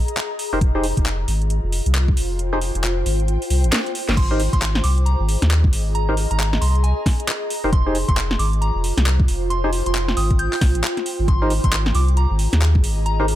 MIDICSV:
0, 0, Header, 1, 6, 480
1, 0, Start_track
1, 0, Key_signature, -4, "minor"
1, 0, Tempo, 444444
1, 664, Time_signature, 4, 2, 24, 8
1, 14422, End_track
2, 0, Start_track
2, 0, Title_t, "Synth bell"
2, 0, Program_c, 0, 98
2, 4503, Note_on_c, 0, 84, 94
2, 4715, Note_off_c, 0, 84, 0
2, 4891, Note_on_c, 0, 84, 93
2, 5085, Note_off_c, 0, 84, 0
2, 5221, Note_on_c, 0, 86, 84
2, 5382, Note_off_c, 0, 86, 0
2, 5461, Note_on_c, 0, 82, 81
2, 5622, Note_off_c, 0, 82, 0
2, 6424, Note_on_c, 0, 82, 93
2, 6635, Note_off_c, 0, 82, 0
2, 6812, Note_on_c, 0, 82, 94
2, 7005, Note_off_c, 0, 82, 0
2, 7142, Note_on_c, 0, 84, 90
2, 7302, Note_off_c, 0, 84, 0
2, 7382, Note_on_c, 0, 80, 84
2, 7542, Note_off_c, 0, 80, 0
2, 8343, Note_on_c, 0, 84, 93
2, 8554, Note_off_c, 0, 84, 0
2, 8730, Note_on_c, 0, 84, 94
2, 8924, Note_off_c, 0, 84, 0
2, 9063, Note_on_c, 0, 86, 88
2, 9223, Note_off_c, 0, 86, 0
2, 9303, Note_on_c, 0, 82, 85
2, 9463, Note_off_c, 0, 82, 0
2, 10262, Note_on_c, 0, 84, 93
2, 10474, Note_off_c, 0, 84, 0
2, 10654, Note_on_c, 0, 84, 91
2, 10846, Note_off_c, 0, 84, 0
2, 10981, Note_on_c, 0, 87, 86
2, 11142, Note_off_c, 0, 87, 0
2, 11221, Note_on_c, 0, 91, 84
2, 11382, Note_off_c, 0, 91, 0
2, 12184, Note_on_c, 0, 84, 94
2, 12395, Note_off_c, 0, 84, 0
2, 12571, Note_on_c, 0, 84, 92
2, 12765, Note_off_c, 0, 84, 0
2, 12907, Note_on_c, 0, 86, 89
2, 13065, Note_off_c, 0, 86, 0
2, 13145, Note_on_c, 0, 82, 85
2, 13304, Note_off_c, 0, 82, 0
2, 14102, Note_on_c, 0, 82, 93
2, 14314, Note_off_c, 0, 82, 0
2, 14422, End_track
3, 0, Start_track
3, 0, Title_t, "Ambient pad"
3, 0, Program_c, 1, 92
3, 0, Note_on_c, 1, 68, 85
3, 0, Note_on_c, 1, 75, 74
3, 0, Note_on_c, 1, 82, 90
3, 663, Note_on_c, 1, 65, 75
3, 1155, Note_on_c, 1, 72, 71
3, 1653, Note_off_c, 1, 75, 0
3, 1795, Note_on_c, 1, 79, 88
3, 2222, Note_off_c, 1, 82, 0
3, 2223, Note_off_c, 1, 68, 0
3, 4504, Note_on_c, 1, 68, 77
3, 4929, Note_on_c, 1, 75, 79
3, 5510, Note_on_c, 1, 82, 83
3, 5524, Note_off_c, 1, 72, 0
3, 5773, Note_off_c, 1, 65, 0
3, 5790, Note_off_c, 1, 79, 0
3, 8345, Note_on_c, 1, 65, 87
3, 8901, Note_on_c, 1, 72, 90
3, 8955, Note_off_c, 1, 68, 0
3, 9517, Note_on_c, 1, 79, 95
3, 9903, Note_off_c, 1, 75, 0
3, 9904, Note_off_c, 1, 82, 0
3, 12185, Note_on_c, 1, 68, 77
3, 12389, Note_on_c, 1, 82, 89
3, 12639, Note_on_c, 1, 75, 77
3, 13293, Note_off_c, 1, 72, 0
3, 13742, Note_off_c, 1, 79, 0
3, 13743, Note_off_c, 1, 65, 0
3, 14422, Note_off_c, 1, 68, 0
3, 14422, Note_off_c, 1, 75, 0
3, 14422, Note_off_c, 1, 82, 0
3, 14422, End_track
4, 0, Start_track
4, 0, Title_t, "Synth stab"
4, 0, Program_c, 2, 62
4, 570, Note_on_c, 2, 63, 80
4, 570, Note_on_c, 2, 67, 72
4, 570, Note_on_c, 2, 70, 68
4, 571, Note_on_c, 2, 72, 83
4, 637, Note_off_c, 2, 67, 0
4, 638, Note_off_c, 2, 63, 0
4, 638, Note_off_c, 2, 70, 0
4, 638, Note_off_c, 2, 72, 0
4, 810, Note_on_c, 2, 63, 78
4, 810, Note_on_c, 2, 67, 72
4, 810, Note_on_c, 2, 68, 68
4, 810, Note_on_c, 2, 72, 82
4, 926, Note_off_c, 2, 63, 0
4, 926, Note_off_c, 2, 67, 0
4, 926, Note_off_c, 2, 68, 0
4, 926, Note_off_c, 2, 72, 0
4, 2730, Note_on_c, 2, 63, 80
4, 2730, Note_on_c, 2, 67, 77
4, 2730, Note_on_c, 2, 68, 77
4, 2730, Note_on_c, 2, 72, 94
4, 2797, Note_off_c, 2, 67, 0
4, 2797, Note_off_c, 2, 68, 0
4, 2798, Note_off_c, 2, 63, 0
4, 2798, Note_off_c, 2, 72, 0
4, 4652, Note_on_c, 2, 67, 70
4, 4653, Note_on_c, 2, 63, 76
4, 4653, Note_on_c, 2, 70, 72
4, 4653, Note_on_c, 2, 72, 86
4, 4767, Note_off_c, 2, 63, 0
4, 4767, Note_off_c, 2, 67, 0
4, 4767, Note_off_c, 2, 70, 0
4, 4768, Note_off_c, 2, 72, 0
4, 6573, Note_on_c, 2, 70, 77
4, 6573, Note_on_c, 2, 72, 90
4, 6574, Note_on_c, 2, 63, 81
4, 6574, Note_on_c, 2, 67, 74
4, 6639, Note_off_c, 2, 70, 0
4, 6639, Note_off_c, 2, 72, 0
4, 6640, Note_off_c, 2, 63, 0
4, 6640, Note_off_c, 2, 67, 0
4, 8252, Note_on_c, 2, 63, 74
4, 8252, Note_on_c, 2, 67, 75
4, 8253, Note_on_c, 2, 70, 74
4, 8253, Note_on_c, 2, 72, 85
4, 8319, Note_off_c, 2, 63, 0
4, 8319, Note_off_c, 2, 67, 0
4, 8319, Note_off_c, 2, 70, 0
4, 8319, Note_off_c, 2, 72, 0
4, 8493, Note_on_c, 2, 63, 78
4, 8493, Note_on_c, 2, 67, 75
4, 8493, Note_on_c, 2, 68, 74
4, 8493, Note_on_c, 2, 72, 88
4, 8608, Note_off_c, 2, 63, 0
4, 8608, Note_off_c, 2, 67, 0
4, 8608, Note_off_c, 2, 68, 0
4, 8608, Note_off_c, 2, 72, 0
4, 10412, Note_on_c, 2, 63, 87
4, 10412, Note_on_c, 2, 72, 97
4, 10413, Note_on_c, 2, 67, 74
4, 10413, Note_on_c, 2, 68, 74
4, 10479, Note_off_c, 2, 63, 0
4, 10479, Note_off_c, 2, 67, 0
4, 10479, Note_off_c, 2, 68, 0
4, 10479, Note_off_c, 2, 72, 0
4, 12332, Note_on_c, 2, 63, 79
4, 12332, Note_on_c, 2, 70, 72
4, 12333, Note_on_c, 2, 67, 70
4, 12333, Note_on_c, 2, 72, 89
4, 12447, Note_off_c, 2, 63, 0
4, 12447, Note_off_c, 2, 70, 0
4, 12448, Note_off_c, 2, 67, 0
4, 12448, Note_off_c, 2, 72, 0
4, 14251, Note_on_c, 2, 67, 81
4, 14252, Note_on_c, 2, 63, 85
4, 14252, Note_on_c, 2, 70, 79
4, 14252, Note_on_c, 2, 72, 93
4, 14318, Note_off_c, 2, 67, 0
4, 14319, Note_off_c, 2, 63, 0
4, 14319, Note_off_c, 2, 70, 0
4, 14319, Note_off_c, 2, 72, 0
4, 14422, End_track
5, 0, Start_track
5, 0, Title_t, "Sub bass"
5, 0, Program_c, 3, 38
5, 570, Note_on_c, 3, 29, 85
5, 1006, Note_off_c, 3, 29, 0
5, 1050, Note_on_c, 3, 29, 96
5, 1355, Note_off_c, 3, 29, 0
5, 1380, Note_on_c, 3, 32, 92
5, 1725, Note_off_c, 3, 32, 0
5, 1769, Note_on_c, 3, 29, 97
5, 1954, Note_off_c, 3, 29, 0
5, 2010, Note_on_c, 3, 36, 100
5, 2315, Note_off_c, 3, 36, 0
5, 2344, Note_on_c, 3, 29, 77
5, 2927, Note_off_c, 3, 29, 0
5, 2970, Note_on_c, 3, 29, 103
5, 3275, Note_off_c, 3, 29, 0
5, 3302, Note_on_c, 3, 32, 91
5, 3646, Note_off_c, 3, 32, 0
5, 3783, Note_on_c, 3, 36, 89
5, 3929, Note_on_c, 3, 32, 99
5, 3946, Note_off_c, 3, 36, 0
5, 4005, Note_off_c, 3, 32, 0
5, 4412, Note_on_c, 3, 32, 101
5, 4847, Note_off_c, 3, 32, 0
5, 4892, Note_on_c, 3, 32, 97
5, 5196, Note_off_c, 3, 32, 0
5, 5227, Note_on_c, 3, 36, 88
5, 5568, Note_off_c, 3, 36, 0
5, 5614, Note_on_c, 3, 32, 98
5, 5797, Note_off_c, 3, 32, 0
5, 5854, Note_on_c, 3, 39, 104
5, 6157, Note_off_c, 3, 39, 0
5, 6185, Note_on_c, 3, 32, 76
5, 6768, Note_off_c, 3, 32, 0
5, 6813, Note_on_c, 3, 32, 97
5, 7117, Note_off_c, 3, 32, 0
5, 7144, Note_on_c, 3, 36, 91
5, 7487, Note_off_c, 3, 36, 0
5, 8251, Note_on_c, 3, 29, 80
5, 8687, Note_off_c, 3, 29, 0
5, 8732, Note_on_c, 3, 29, 97
5, 9036, Note_off_c, 3, 29, 0
5, 9063, Note_on_c, 3, 32, 94
5, 9406, Note_off_c, 3, 32, 0
5, 9452, Note_on_c, 3, 29, 91
5, 9635, Note_off_c, 3, 29, 0
5, 9691, Note_on_c, 3, 36, 104
5, 9995, Note_off_c, 3, 36, 0
5, 10023, Note_on_c, 3, 29, 83
5, 10606, Note_off_c, 3, 29, 0
5, 10652, Note_on_c, 3, 29, 100
5, 10956, Note_off_c, 3, 29, 0
5, 10983, Note_on_c, 3, 32, 94
5, 11326, Note_off_c, 3, 32, 0
5, 11463, Note_on_c, 3, 36, 88
5, 11609, Note_on_c, 3, 32, 96
5, 11625, Note_off_c, 3, 36, 0
5, 11685, Note_off_c, 3, 32, 0
5, 12090, Note_on_c, 3, 32, 96
5, 12526, Note_off_c, 3, 32, 0
5, 12571, Note_on_c, 3, 32, 99
5, 12876, Note_off_c, 3, 32, 0
5, 12902, Note_on_c, 3, 36, 96
5, 13246, Note_off_c, 3, 36, 0
5, 13291, Note_on_c, 3, 32, 94
5, 13475, Note_off_c, 3, 32, 0
5, 13533, Note_on_c, 3, 39, 103
5, 13837, Note_off_c, 3, 39, 0
5, 13864, Note_on_c, 3, 32, 78
5, 14422, Note_off_c, 3, 32, 0
5, 14422, End_track
6, 0, Start_track
6, 0, Title_t, "Drums"
6, 90, Note_on_c, 9, 42, 65
6, 181, Note_on_c, 9, 39, 105
6, 198, Note_off_c, 9, 42, 0
6, 289, Note_off_c, 9, 39, 0
6, 422, Note_on_c, 9, 46, 102
6, 530, Note_off_c, 9, 46, 0
6, 662, Note_on_c, 9, 36, 106
6, 662, Note_on_c, 9, 42, 66
6, 770, Note_off_c, 9, 36, 0
6, 770, Note_off_c, 9, 42, 0
6, 902, Note_on_c, 9, 46, 106
6, 1010, Note_off_c, 9, 46, 0
6, 1050, Note_on_c, 9, 36, 55
6, 1051, Note_on_c, 9, 42, 71
6, 1142, Note_off_c, 9, 42, 0
6, 1142, Note_on_c, 9, 39, 113
6, 1142, Note_on_c, 9, 42, 67
6, 1158, Note_off_c, 9, 36, 0
6, 1250, Note_off_c, 9, 39, 0
6, 1250, Note_off_c, 9, 42, 0
6, 1382, Note_on_c, 9, 46, 108
6, 1490, Note_off_c, 9, 46, 0
6, 1529, Note_on_c, 9, 42, 37
6, 1621, Note_off_c, 9, 42, 0
6, 1621, Note_on_c, 9, 42, 64
6, 1729, Note_off_c, 9, 42, 0
6, 1862, Note_on_c, 9, 46, 102
6, 1970, Note_off_c, 9, 46, 0
6, 2011, Note_on_c, 9, 42, 66
6, 2102, Note_on_c, 9, 39, 110
6, 2119, Note_off_c, 9, 42, 0
6, 2210, Note_off_c, 9, 39, 0
6, 2250, Note_on_c, 9, 36, 97
6, 2343, Note_on_c, 9, 46, 109
6, 2358, Note_off_c, 9, 36, 0
6, 2451, Note_off_c, 9, 46, 0
6, 2583, Note_on_c, 9, 42, 66
6, 2691, Note_off_c, 9, 42, 0
6, 2824, Note_on_c, 9, 46, 105
6, 2932, Note_off_c, 9, 46, 0
6, 2973, Note_on_c, 9, 42, 70
6, 3065, Note_off_c, 9, 42, 0
6, 3065, Note_on_c, 9, 39, 115
6, 3065, Note_on_c, 9, 42, 67
6, 3173, Note_off_c, 9, 39, 0
6, 3173, Note_off_c, 9, 42, 0
6, 3305, Note_on_c, 9, 46, 105
6, 3413, Note_off_c, 9, 46, 0
6, 3453, Note_on_c, 9, 42, 37
6, 3544, Note_off_c, 9, 42, 0
6, 3544, Note_on_c, 9, 42, 65
6, 3652, Note_off_c, 9, 42, 0
6, 3693, Note_on_c, 9, 46, 64
6, 3784, Note_off_c, 9, 46, 0
6, 3784, Note_on_c, 9, 46, 109
6, 3892, Note_off_c, 9, 46, 0
6, 3933, Note_on_c, 9, 42, 67
6, 4024, Note_on_c, 9, 38, 105
6, 4024, Note_on_c, 9, 39, 115
6, 4041, Note_off_c, 9, 42, 0
6, 4132, Note_off_c, 9, 38, 0
6, 4132, Note_off_c, 9, 39, 0
6, 4173, Note_on_c, 9, 42, 37
6, 4266, Note_on_c, 9, 46, 104
6, 4281, Note_off_c, 9, 42, 0
6, 4374, Note_off_c, 9, 46, 0
6, 4415, Note_on_c, 9, 38, 80
6, 4504, Note_on_c, 9, 36, 115
6, 4506, Note_on_c, 9, 42, 65
6, 4506, Note_on_c, 9, 49, 72
6, 4523, Note_off_c, 9, 38, 0
6, 4612, Note_off_c, 9, 36, 0
6, 4614, Note_off_c, 9, 42, 0
6, 4614, Note_off_c, 9, 49, 0
6, 4747, Note_on_c, 9, 46, 107
6, 4855, Note_off_c, 9, 46, 0
6, 4893, Note_on_c, 9, 36, 59
6, 4894, Note_on_c, 9, 42, 70
6, 4987, Note_off_c, 9, 42, 0
6, 4987, Note_on_c, 9, 39, 117
6, 4987, Note_on_c, 9, 42, 65
6, 5001, Note_off_c, 9, 36, 0
6, 5095, Note_off_c, 9, 39, 0
6, 5095, Note_off_c, 9, 42, 0
6, 5133, Note_on_c, 9, 40, 69
6, 5224, Note_on_c, 9, 46, 105
6, 5241, Note_off_c, 9, 40, 0
6, 5332, Note_off_c, 9, 46, 0
6, 5375, Note_on_c, 9, 42, 35
6, 5467, Note_off_c, 9, 42, 0
6, 5467, Note_on_c, 9, 42, 62
6, 5575, Note_off_c, 9, 42, 0
6, 5708, Note_on_c, 9, 46, 103
6, 5816, Note_off_c, 9, 46, 0
6, 5856, Note_on_c, 9, 40, 68
6, 5856, Note_on_c, 9, 42, 66
6, 5947, Note_on_c, 9, 39, 113
6, 5964, Note_off_c, 9, 40, 0
6, 5964, Note_off_c, 9, 42, 0
6, 6055, Note_off_c, 9, 39, 0
6, 6093, Note_on_c, 9, 36, 106
6, 6186, Note_on_c, 9, 46, 111
6, 6201, Note_off_c, 9, 36, 0
6, 6294, Note_off_c, 9, 46, 0
6, 6426, Note_on_c, 9, 42, 60
6, 6534, Note_off_c, 9, 42, 0
6, 6665, Note_on_c, 9, 46, 103
6, 6773, Note_off_c, 9, 46, 0
6, 6814, Note_on_c, 9, 42, 66
6, 6907, Note_off_c, 9, 42, 0
6, 6907, Note_on_c, 9, 39, 119
6, 6907, Note_on_c, 9, 42, 62
6, 7015, Note_off_c, 9, 39, 0
6, 7015, Note_off_c, 9, 42, 0
6, 7053, Note_on_c, 9, 40, 69
6, 7146, Note_on_c, 9, 46, 103
6, 7161, Note_off_c, 9, 40, 0
6, 7254, Note_off_c, 9, 46, 0
6, 7294, Note_on_c, 9, 42, 35
6, 7386, Note_off_c, 9, 42, 0
6, 7386, Note_on_c, 9, 42, 61
6, 7494, Note_off_c, 9, 42, 0
6, 7624, Note_on_c, 9, 36, 107
6, 7626, Note_on_c, 9, 40, 66
6, 7626, Note_on_c, 9, 46, 102
6, 7732, Note_off_c, 9, 36, 0
6, 7734, Note_off_c, 9, 40, 0
6, 7734, Note_off_c, 9, 46, 0
6, 7774, Note_on_c, 9, 42, 61
6, 7865, Note_on_c, 9, 39, 117
6, 7882, Note_off_c, 9, 42, 0
6, 7973, Note_off_c, 9, 39, 0
6, 8105, Note_on_c, 9, 46, 107
6, 8213, Note_off_c, 9, 46, 0
6, 8344, Note_on_c, 9, 36, 121
6, 8345, Note_on_c, 9, 42, 62
6, 8452, Note_off_c, 9, 36, 0
6, 8453, Note_off_c, 9, 42, 0
6, 8585, Note_on_c, 9, 46, 96
6, 8693, Note_off_c, 9, 46, 0
6, 8732, Note_on_c, 9, 36, 62
6, 8733, Note_on_c, 9, 42, 63
6, 8825, Note_off_c, 9, 42, 0
6, 8825, Note_on_c, 9, 39, 125
6, 8825, Note_on_c, 9, 42, 64
6, 8840, Note_off_c, 9, 36, 0
6, 8933, Note_off_c, 9, 39, 0
6, 8933, Note_off_c, 9, 42, 0
6, 8973, Note_on_c, 9, 40, 67
6, 9066, Note_on_c, 9, 46, 102
6, 9081, Note_off_c, 9, 40, 0
6, 9174, Note_off_c, 9, 46, 0
6, 9215, Note_on_c, 9, 42, 34
6, 9308, Note_off_c, 9, 42, 0
6, 9308, Note_on_c, 9, 42, 59
6, 9416, Note_off_c, 9, 42, 0
6, 9546, Note_on_c, 9, 46, 102
6, 9654, Note_off_c, 9, 46, 0
6, 9693, Note_on_c, 9, 40, 67
6, 9693, Note_on_c, 9, 42, 64
6, 9786, Note_on_c, 9, 39, 118
6, 9801, Note_off_c, 9, 40, 0
6, 9801, Note_off_c, 9, 42, 0
6, 9894, Note_off_c, 9, 39, 0
6, 9932, Note_on_c, 9, 36, 112
6, 10025, Note_on_c, 9, 46, 102
6, 10040, Note_off_c, 9, 36, 0
6, 10133, Note_off_c, 9, 46, 0
6, 10265, Note_on_c, 9, 42, 59
6, 10373, Note_off_c, 9, 42, 0
6, 10504, Note_on_c, 9, 46, 95
6, 10612, Note_off_c, 9, 46, 0
6, 10652, Note_on_c, 9, 42, 66
6, 10744, Note_off_c, 9, 42, 0
6, 10744, Note_on_c, 9, 39, 122
6, 10744, Note_on_c, 9, 42, 63
6, 10852, Note_off_c, 9, 39, 0
6, 10852, Note_off_c, 9, 42, 0
6, 10891, Note_on_c, 9, 40, 65
6, 10982, Note_on_c, 9, 46, 97
6, 10999, Note_off_c, 9, 40, 0
6, 11090, Note_off_c, 9, 46, 0
6, 11130, Note_on_c, 9, 42, 36
6, 11131, Note_on_c, 9, 36, 63
6, 11222, Note_off_c, 9, 42, 0
6, 11222, Note_on_c, 9, 42, 63
6, 11239, Note_off_c, 9, 36, 0
6, 11330, Note_off_c, 9, 42, 0
6, 11371, Note_on_c, 9, 39, 63
6, 11371, Note_on_c, 9, 46, 57
6, 11463, Note_off_c, 9, 46, 0
6, 11463, Note_on_c, 9, 36, 108
6, 11463, Note_on_c, 9, 40, 66
6, 11463, Note_on_c, 9, 46, 98
6, 11479, Note_off_c, 9, 39, 0
6, 11571, Note_off_c, 9, 36, 0
6, 11571, Note_off_c, 9, 40, 0
6, 11571, Note_off_c, 9, 46, 0
6, 11611, Note_on_c, 9, 42, 62
6, 11703, Note_on_c, 9, 39, 116
6, 11719, Note_off_c, 9, 42, 0
6, 11811, Note_off_c, 9, 39, 0
6, 11850, Note_on_c, 9, 40, 33
6, 11850, Note_on_c, 9, 42, 37
6, 11944, Note_on_c, 9, 46, 102
6, 11958, Note_off_c, 9, 40, 0
6, 11958, Note_off_c, 9, 42, 0
6, 12052, Note_off_c, 9, 46, 0
6, 12183, Note_on_c, 9, 36, 122
6, 12185, Note_on_c, 9, 42, 62
6, 12291, Note_off_c, 9, 36, 0
6, 12293, Note_off_c, 9, 42, 0
6, 12423, Note_on_c, 9, 46, 98
6, 12531, Note_off_c, 9, 46, 0
6, 12571, Note_on_c, 9, 42, 66
6, 12572, Note_on_c, 9, 36, 63
6, 12662, Note_off_c, 9, 42, 0
6, 12662, Note_on_c, 9, 39, 121
6, 12662, Note_on_c, 9, 42, 66
6, 12680, Note_off_c, 9, 36, 0
6, 12770, Note_off_c, 9, 39, 0
6, 12770, Note_off_c, 9, 42, 0
6, 12810, Note_on_c, 9, 40, 65
6, 12902, Note_on_c, 9, 46, 98
6, 12918, Note_off_c, 9, 40, 0
6, 13010, Note_off_c, 9, 46, 0
6, 13051, Note_on_c, 9, 42, 38
6, 13143, Note_off_c, 9, 42, 0
6, 13143, Note_on_c, 9, 42, 62
6, 13251, Note_off_c, 9, 42, 0
6, 13380, Note_on_c, 9, 46, 95
6, 13488, Note_off_c, 9, 46, 0
6, 13531, Note_on_c, 9, 40, 63
6, 13531, Note_on_c, 9, 42, 67
6, 13623, Note_on_c, 9, 39, 110
6, 13639, Note_off_c, 9, 40, 0
6, 13639, Note_off_c, 9, 42, 0
6, 13731, Note_off_c, 9, 39, 0
6, 13772, Note_on_c, 9, 36, 107
6, 13864, Note_on_c, 9, 46, 102
6, 13880, Note_off_c, 9, 36, 0
6, 13972, Note_off_c, 9, 46, 0
6, 14104, Note_on_c, 9, 42, 67
6, 14212, Note_off_c, 9, 42, 0
6, 14344, Note_on_c, 9, 46, 101
6, 14422, Note_off_c, 9, 46, 0
6, 14422, End_track
0, 0, End_of_file